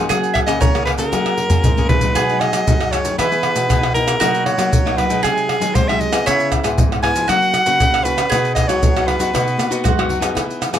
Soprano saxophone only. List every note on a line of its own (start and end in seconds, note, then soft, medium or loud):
0.34 0.40 E5 medium
0.46 0.59 D#5 loud
0.61 0.85 C#5 medium
0.86 0.92 B4 medium
0.99 1.85 A#4 medium
1.89 2.42 B4 medium
2.40 2.93 D#5 medium
2.92 3.18 C#5 medium
3.18 3.91 B4 medium
3.95 4.43 A#4 loud
4.46 4.99 C#5 medium
4.98 5.25 B4 medium
5.24 5.76 G#4 medium
5.75 5.90 C5 medium
5.88 6.02 E5 medium
6.01 6.26 D#5 medium
6.27 6.50 C#5 loud
7.03 7.31 G#5 loud
7.29 8.06 F#5 loud
8.04 8.54 B4 medium
8.55 8.69 D#5 medium
8.68 9.09 C#5 medium
9.07 9.85 B4 medium